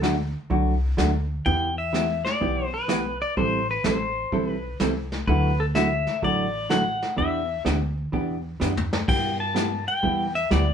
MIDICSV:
0, 0, Header, 1, 5, 480
1, 0, Start_track
1, 0, Tempo, 476190
1, 1474, Time_signature, 4, 2, 24, 8
1, 10823, End_track
2, 0, Start_track
2, 0, Title_t, "Pedal steel guitar"
2, 0, Program_c, 0, 26
2, 1470, Note_on_c, 0, 79, 102
2, 1792, Note_off_c, 0, 79, 0
2, 1796, Note_on_c, 0, 76, 86
2, 2264, Note_on_c, 0, 74, 96
2, 2289, Note_off_c, 0, 76, 0
2, 2760, Note_on_c, 0, 71, 93
2, 2764, Note_off_c, 0, 74, 0
2, 3204, Note_off_c, 0, 71, 0
2, 3242, Note_on_c, 0, 74, 78
2, 3396, Note_off_c, 0, 74, 0
2, 3400, Note_on_c, 0, 72, 93
2, 3695, Note_off_c, 0, 72, 0
2, 3737, Note_on_c, 0, 71, 70
2, 3890, Note_off_c, 0, 71, 0
2, 3901, Note_on_c, 0, 72, 70
2, 4516, Note_off_c, 0, 72, 0
2, 4516, Note_on_c, 0, 71, 70
2, 4808, Note_off_c, 0, 71, 0
2, 5317, Note_on_c, 0, 71, 76
2, 5644, Note_on_c, 0, 69, 72
2, 5646, Note_off_c, 0, 71, 0
2, 5695, Note_off_c, 0, 69, 0
2, 5797, Note_on_c, 0, 76, 89
2, 6290, Note_off_c, 0, 76, 0
2, 6294, Note_on_c, 0, 74, 98
2, 6761, Note_on_c, 0, 78, 87
2, 6778, Note_off_c, 0, 74, 0
2, 7233, Note_off_c, 0, 78, 0
2, 7237, Note_on_c, 0, 76, 88
2, 7682, Note_off_c, 0, 76, 0
2, 9160, Note_on_c, 0, 79, 97
2, 9455, Note_off_c, 0, 79, 0
2, 9476, Note_on_c, 0, 81, 94
2, 9922, Note_off_c, 0, 81, 0
2, 9958, Note_on_c, 0, 79, 106
2, 10402, Note_off_c, 0, 79, 0
2, 10436, Note_on_c, 0, 76, 88
2, 10584, Note_off_c, 0, 76, 0
2, 10600, Note_on_c, 0, 74, 83
2, 10823, Note_off_c, 0, 74, 0
2, 10823, End_track
3, 0, Start_track
3, 0, Title_t, "Hollow-body jazz guitar"
3, 0, Program_c, 1, 26
3, 17, Note_on_c, 1, 50, 66
3, 20, Note_on_c, 1, 54, 58
3, 25, Note_on_c, 1, 57, 70
3, 31, Note_on_c, 1, 62, 63
3, 31, Note_on_c, 1, 66, 71
3, 146, Note_off_c, 1, 50, 0
3, 147, Note_off_c, 1, 54, 0
3, 150, Note_off_c, 1, 57, 0
3, 153, Note_off_c, 1, 62, 0
3, 153, Note_off_c, 1, 66, 0
3, 503, Note_on_c, 1, 50, 57
3, 504, Note_on_c, 1, 54, 57
3, 507, Note_on_c, 1, 57, 51
3, 512, Note_on_c, 1, 62, 51
3, 513, Note_on_c, 1, 66, 58
3, 737, Note_off_c, 1, 50, 0
3, 737, Note_off_c, 1, 54, 0
3, 738, Note_off_c, 1, 57, 0
3, 741, Note_off_c, 1, 62, 0
3, 742, Note_off_c, 1, 66, 0
3, 980, Note_on_c, 1, 50, 66
3, 985, Note_on_c, 1, 57, 78
3, 986, Note_on_c, 1, 54, 65
3, 989, Note_on_c, 1, 62, 85
3, 992, Note_on_c, 1, 66, 80
3, 1107, Note_off_c, 1, 50, 0
3, 1110, Note_off_c, 1, 57, 0
3, 1111, Note_off_c, 1, 54, 0
3, 1112, Note_off_c, 1, 62, 0
3, 1114, Note_off_c, 1, 66, 0
3, 1469, Note_on_c, 1, 52, 53
3, 1474, Note_on_c, 1, 59, 56
3, 1475, Note_on_c, 1, 64, 56
3, 1485, Note_on_c, 1, 67, 59
3, 1700, Note_off_c, 1, 52, 0
3, 1702, Note_off_c, 1, 59, 0
3, 1703, Note_off_c, 1, 64, 0
3, 1708, Note_off_c, 1, 67, 0
3, 1943, Note_on_c, 1, 52, 67
3, 1952, Note_on_c, 1, 59, 58
3, 1954, Note_on_c, 1, 64, 58
3, 1959, Note_on_c, 1, 67, 57
3, 2070, Note_off_c, 1, 52, 0
3, 2074, Note_off_c, 1, 59, 0
3, 2075, Note_off_c, 1, 64, 0
3, 2078, Note_off_c, 1, 67, 0
3, 2427, Note_on_c, 1, 52, 49
3, 2429, Note_on_c, 1, 59, 55
3, 2437, Note_on_c, 1, 64, 57
3, 2441, Note_on_c, 1, 67, 61
3, 2660, Note_off_c, 1, 52, 0
3, 2660, Note_off_c, 1, 59, 0
3, 2664, Note_off_c, 1, 64, 0
3, 2666, Note_off_c, 1, 67, 0
3, 2905, Note_on_c, 1, 52, 69
3, 2913, Note_on_c, 1, 59, 76
3, 2917, Note_on_c, 1, 64, 65
3, 2925, Note_on_c, 1, 67, 79
3, 3031, Note_off_c, 1, 52, 0
3, 3035, Note_off_c, 1, 59, 0
3, 3037, Note_off_c, 1, 64, 0
3, 3041, Note_off_c, 1, 67, 0
3, 3396, Note_on_c, 1, 52, 55
3, 3400, Note_on_c, 1, 55, 58
3, 3404, Note_on_c, 1, 60, 57
3, 3408, Note_on_c, 1, 64, 52
3, 3410, Note_on_c, 1, 69, 62
3, 3624, Note_off_c, 1, 52, 0
3, 3626, Note_off_c, 1, 55, 0
3, 3628, Note_off_c, 1, 60, 0
3, 3630, Note_off_c, 1, 64, 0
3, 3631, Note_off_c, 1, 69, 0
3, 3870, Note_on_c, 1, 52, 55
3, 3877, Note_on_c, 1, 60, 60
3, 3878, Note_on_c, 1, 55, 65
3, 3883, Note_on_c, 1, 64, 62
3, 3886, Note_on_c, 1, 69, 72
3, 3993, Note_off_c, 1, 52, 0
3, 3997, Note_off_c, 1, 55, 0
3, 3997, Note_off_c, 1, 60, 0
3, 4000, Note_off_c, 1, 64, 0
3, 4001, Note_off_c, 1, 69, 0
3, 4358, Note_on_c, 1, 52, 50
3, 4361, Note_on_c, 1, 55, 51
3, 4367, Note_on_c, 1, 60, 57
3, 4367, Note_on_c, 1, 69, 58
3, 4368, Note_on_c, 1, 64, 53
3, 4585, Note_off_c, 1, 52, 0
3, 4587, Note_off_c, 1, 55, 0
3, 4589, Note_off_c, 1, 60, 0
3, 4590, Note_off_c, 1, 64, 0
3, 4590, Note_off_c, 1, 69, 0
3, 4845, Note_on_c, 1, 52, 73
3, 4845, Note_on_c, 1, 55, 69
3, 4852, Note_on_c, 1, 60, 84
3, 4855, Note_on_c, 1, 69, 77
3, 4856, Note_on_c, 1, 64, 75
3, 4961, Note_off_c, 1, 52, 0
3, 4961, Note_off_c, 1, 55, 0
3, 4964, Note_off_c, 1, 60, 0
3, 4966, Note_off_c, 1, 64, 0
3, 4966, Note_off_c, 1, 69, 0
3, 5319, Note_on_c, 1, 50, 58
3, 5324, Note_on_c, 1, 57, 56
3, 5325, Note_on_c, 1, 54, 53
3, 5334, Note_on_c, 1, 64, 64
3, 5337, Note_on_c, 1, 66, 68
3, 5546, Note_off_c, 1, 50, 0
3, 5548, Note_off_c, 1, 54, 0
3, 5548, Note_off_c, 1, 57, 0
3, 5553, Note_off_c, 1, 64, 0
3, 5554, Note_off_c, 1, 66, 0
3, 5794, Note_on_c, 1, 50, 61
3, 5800, Note_on_c, 1, 57, 71
3, 5801, Note_on_c, 1, 54, 75
3, 5802, Note_on_c, 1, 64, 73
3, 5806, Note_on_c, 1, 66, 70
3, 5916, Note_off_c, 1, 50, 0
3, 5918, Note_off_c, 1, 57, 0
3, 5919, Note_off_c, 1, 54, 0
3, 5920, Note_off_c, 1, 64, 0
3, 5921, Note_off_c, 1, 66, 0
3, 6273, Note_on_c, 1, 50, 53
3, 6275, Note_on_c, 1, 54, 59
3, 6278, Note_on_c, 1, 57, 59
3, 6282, Note_on_c, 1, 64, 62
3, 6289, Note_on_c, 1, 66, 52
3, 6502, Note_off_c, 1, 50, 0
3, 6503, Note_off_c, 1, 54, 0
3, 6505, Note_off_c, 1, 57, 0
3, 6507, Note_off_c, 1, 64, 0
3, 6510, Note_off_c, 1, 66, 0
3, 6750, Note_on_c, 1, 50, 69
3, 6754, Note_on_c, 1, 54, 75
3, 6760, Note_on_c, 1, 57, 80
3, 6761, Note_on_c, 1, 64, 71
3, 6762, Note_on_c, 1, 66, 66
3, 6873, Note_off_c, 1, 50, 0
3, 6875, Note_off_c, 1, 54, 0
3, 6878, Note_off_c, 1, 57, 0
3, 6879, Note_off_c, 1, 64, 0
3, 6879, Note_off_c, 1, 66, 0
3, 7223, Note_on_c, 1, 52, 51
3, 7230, Note_on_c, 1, 59, 66
3, 7236, Note_on_c, 1, 62, 63
3, 7238, Note_on_c, 1, 67, 61
3, 7457, Note_off_c, 1, 52, 0
3, 7461, Note_off_c, 1, 59, 0
3, 7464, Note_off_c, 1, 62, 0
3, 7465, Note_off_c, 1, 67, 0
3, 7708, Note_on_c, 1, 52, 67
3, 7712, Note_on_c, 1, 59, 67
3, 7720, Note_on_c, 1, 62, 59
3, 7723, Note_on_c, 1, 67, 73
3, 7832, Note_off_c, 1, 52, 0
3, 7834, Note_off_c, 1, 59, 0
3, 7839, Note_off_c, 1, 62, 0
3, 7840, Note_off_c, 1, 67, 0
3, 8188, Note_on_c, 1, 52, 48
3, 8197, Note_on_c, 1, 59, 53
3, 8198, Note_on_c, 1, 62, 53
3, 8203, Note_on_c, 1, 67, 57
3, 8420, Note_off_c, 1, 52, 0
3, 8424, Note_off_c, 1, 59, 0
3, 8425, Note_off_c, 1, 62, 0
3, 8427, Note_off_c, 1, 67, 0
3, 8667, Note_on_c, 1, 52, 66
3, 8678, Note_on_c, 1, 59, 70
3, 8679, Note_on_c, 1, 62, 64
3, 8682, Note_on_c, 1, 67, 75
3, 8792, Note_off_c, 1, 52, 0
3, 8797, Note_off_c, 1, 59, 0
3, 8798, Note_off_c, 1, 62, 0
3, 8799, Note_off_c, 1, 67, 0
3, 9154, Note_on_c, 1, 55, 49
3, 9158, Note_on_c, 1, 59, 53
3, 9166, Note_on_c, 1, 64, 57
3, 9170, Note_on_c, 1, 67, 68
3, 9383, Note_off_c, 1, 55, 0
3, 9385, Note_off_c, 1, 59, 0
3, 9388, Note_off_c, 1, 64, 0
3, 9390, Note_off_c, 1, 67, 0
3, 9620, Note_on_c, 1, 55, 63
3, 9630, Note_on_c, 1, 59, 62
3, 9631, Note_on_c, 1, 64, 66
3, 9638, Note_on_c, 1, 67, 62
3, 9748, Note_off_c, 1, 55, 0
3, 9753, Note_off_c, 1, 59, 0
3, 9754, Note_off_c, 1, 64, 0
3, 9757, Note_off_c, 1, 67, 0
3, 10109, Note_on_c, 1, 55, 52
3, 10116, Note_on_c, 1, 59, 57
3, 10119, Note_on_c, 1, 64, 54
3, 10126, Note_on_c, 1, 67, 56
3, 10340, Note_off_c, 1, 55, 0
3, 10343, Note_off_c, 1, 59, 0
3, 10345, Note_off_c, 1, 64, 0
3, 10348, Note_off_c, 1, 67, 0
3, 10590, Note_on_c, 1, 55, 69
3, 10601, Note_on_c, 1, 64, 82
3, 10602, Note_on_c, 1, 59, 80
3, 10606, Note_on_c, 1, 67, 78
3, 10713, Note_off_c, 1, 55, 0
3, 10718, Note_off_c, 1, 64, 0
3, 10719, Note_off_c, 1, 59, 0
3, 10721, Note_off_c, 1, 67, 0
3, 10823, End_track
4, 0, Start_track
4, 0, Title_t, "Upright bass"
4, 0, Program_c, 2, 32
4, 0, Note_on_c, 2, 38, 101
4, 322, Note_off_c, 2, 38, 0
4, 511, Note_on_c, 2, 36, 87
4, 920, Note_off_c, 2, 36, 0
4, 990, Note_on_c, 2, 38, 79
4, 1400, Note_off_c, 2, 38, 0
4, 1473, Note_on_c, 2, 40, 99
4, 2242, Note_off_c, 2, 40, 0
4, 2437, Note_on_c, 2, 35, 85
4, 3204, Note_off_c, 2, 35, 0
4, 3398, Note_on_c, 2, 33, 100
4, 3781, Note_off_c, 2, 33, 0
4, 3877, Note_on_c, 2, 33, 77
4, 4284, Note_off_c, 2, 33, 0
4, 4359, Note_on_c, 2, 35, 84
4, 4765, Note_off_c, 2, 35, 0
4, 4837, Note_on_c, 2, 36, 80
4, 5244, Note_off_c, 2, 36, 0
4, 5317, Note_on_c, 2, 38, 103
4, 6084, Note_off_c, 2, 38, 0
4, 6280, Note_on_c, 2, 33, 78
4, 7046, Note_off_c, 2, 33, 0
4, 7239, Note_on_c, 2, 40, 90
4, 7621, Note_off_c, 2, 40, 0
4, 7715, Note_on_c, 2, 38, 88
4, 8123, Note_off_c, 2, 38, 0
4, 8197, Note_on_c, 2, 40, 75
4, 8604, Note_off_c, 2, 40, 0
4, 8682, Note_on_c, 2, 42, 89
4, 9087, Note_off_c, 2, 42, 0
4, 9156, Note_on_c, 2, 43, 93
4, 9923, Note_off_c, 2, 43, 0
4, 10116, Note_on_c, 2, 40, 82
4, 10523, Note_off_c, 2, 40, 0
4, 10592, Note_on_c, 2, 38, 94
4, 10823, Note_off_c, 2, 38, 0
4, 10823, End_track
5, 0, Start_track
5, 0, Title_t, "Drums"
5, 33, Note_on_c, 9, 38, 56
5, 33, Note_on_c, 9, 44, 53
5, 134, Note_off_c, 9, 38, 0
5, 134, Note_off_c, 9, 44, 0
5, 508, Note_on_c, 9, 25, 50
5, 510, Note_on_c, 9, 36, 37
5, 610, Note_off_c, 9, 36, 0
5, 989, Note_on_c, 9, 38, 56
5, 989, Note_on_c, 9, 44, 56
5, 1090, Note_off_c, 9, 38, 0
5, 1090, Note_off_c, 9, 44, 0
5, 1473, Note_off_c, 9, 25, 0
5, 1473, Note_on_c, 9, 25, 46
5, 1473, Note_on_c, 9, 36, 32
5, 1574, Note_off_c, 9, 36, 0
5, 1957, Note_on_c, 9, 38, 52
5, 1957, Note_on_c, 9, 44, 54
5, 2058, Note_off_c, 9, 38, 0
5, 2058, Note_off_c, 9, 44, 0
5, 2274, Note_on_c, 9, 38, 41
5, 2375, Note_off_c, 9, 38, 0
5, 2435, Note_on_c, 9, 36, 36
5, 2438, Note_off_c, 9, 25, 0
5, 2438, Note_on_c, 9, 25, 51
5, 2536, Note_off_c, 9, 36, 0
5, 2910, Note_on_c, 9, 38, 56
5, 2910, Note_on_c, 9, 44, 68
5, 3011, Note_off_c, 9, 38, 0
5, 3011, Note_off_c, 9, 44, 0
5, 3396, Note_off_c, 9, 25, 0
5, 3396, Note_on_c, 9, 25, 45
5, 3397, Note_on_c, 9, 36, 33
5, 3498, Note_off_c, 9, 36, 0
5, 3872, Note_on_c, 9, 38, 59
5, 3872, Note_on_c, 9, 44, 55
5, 3973, Note_off_c, 9, 38, 0
5, 3973, Note_off_c, 9, 44, 0
5, 4357, Note_off_c, 9, 25, 0
5, 4357, Note_on_c, 9, 25, 50
5, 4358, Note_on_c, 9, 36, 33
5, 4458, Note_off_c, 9, 36, 0
5, 4836, Note_on_c, 9, 38, 55
5, 4836, Note_on_c, 9, 44, 49
5, 4937, Note_off_c, 9, 38, 0
5, 4937, Note_off_c, 9, 44, 0
5, 5160, Note_on_c, 9, 38, 41
5, 5261, Note_off_c, 9, 38, 0
5, 5315, Note_off_c, 9, 25, 0
5, 5315, Note_on_c, 9, 25, 53
5, 5317, Note_on_c, 9, 36, 36
5, 5417, Note_off_c, 9, 36, 0
5, 5796, Note_on_c, 9, 38, 59
5, 5796, Note_on_c, 9, 44, 63
5, 5896, Note_off_c, 9, 38, 0
5, 5896, Note_off_c, 9, 44, 0
5, 6117, Note_on_c, 9, 38, 39
5, 6217, Note_off_c, 9, 38, 0
5, 6277, Note_off_c, 9, 25, 0
5, 6277, Note_on_c, 9, 25, 52
5, 6277, Note_on_c, 9, 36, 33
5, 6377, Note_off_c, 9, 36, 0
5, 6755, Note_on_c, 9, 38, 60
5, 6755, Note_on_c, 9, 44, 56
5, 6856, Note_off_c, 9, 38, 0
5, 6856, Note_off_c, 9, 44, 0
5, 7081, Note_on_c, 9, 38, 41
5, 7182, Note_off_c, 9, 38, 0
5, 7237, Note_on_c, 9, 36, 34
5, 7240, Note_off_c, 9, 25, 0
5, 7240, Note_on_c, 9, 25, 45
5, 7337, Note_off_c, 9, 36, 0
5, 7718, Note_on_c, 9, 38, 59
5, 7718, Note_on_c, 9, 44, 47
5, 7819, Note_off_c, 9, 38, 0
5, 7819, Note_off_c, 9, 44, 0
5, 8196, Note_on_c, 9, 36, 35
5, 8199, Note_off_c, 9, 25, 0
5, 8199, Note_on_c, 9, 25, 43
5, 8297, Note_off_c, 9, 36, 0
5, 8679, Note_on_c, 9, 38, 45
5, 8679, Note_on_c, 9, 44, 61
5, 8780, Note_off_c, 9, 38, 0
5, 8780, Note_off_c, 9, 44, 0
5, 8842, Note_on_c, 9, 43, 60
5, 8943, Note_off_c, 9, 43, 0
5, 8999, Note_on_c, 9, 38, 81
5, 9100, Note_off_c, 9, 38, 0
5, 9155, Note_on_c, 9, 36, 72
5, 9159, Note_off_c, 9, 25, 0
5, 9159, Note_on_c, 9, 25, 43
5, 9159, Note_on_c, 9, 49, 81
5, 9255, Note_off_c, 9, 36, 0
5, 9259, Note_off_c, 9, 49, 0
5, 9634, Note_on_c, 9, 38, 60
5, 9634, Note_on_c, 9, 44, 65
5, 9735, Note_off_c, 9, 38, 0
5, 9735, Note_off_c, 9, 44, 0
5, 10113, Note_on_c, 9, 36, 36
5, 10115, Note_off_c, 9, 25, 0
5, 10115, Note_on_c, 9, 25, 53
5, 10214, Note_off_c, 9, 36, 0
5, 10593, Note_on_c, 9, 38, 56
5, 10593, Note_on_c, 9, 44, 50
5, 10694, Note_off_c, 9, 38, 0
5, 10694, Note_off_c, 9, 44, 0
5, 10823, Note_off_c, 9, 25, 0
5, 10823, End_track
0, 0, End_of_file